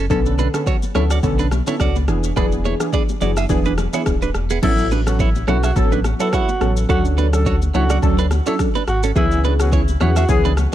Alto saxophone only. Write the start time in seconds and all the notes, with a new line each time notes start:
4.64 E4
5.07 F#4
5.48 F#4
5.64 F#4
5.77 A4
6.21 A4
6.33 F#4
6.90 F#4
7.34 A4
7.75 F#4
8.03 A4
8.47 A4
8.88 F#4
9.16 E4
9.60 F#4
10.01 F#4
10.17 F#4
10.30 G#4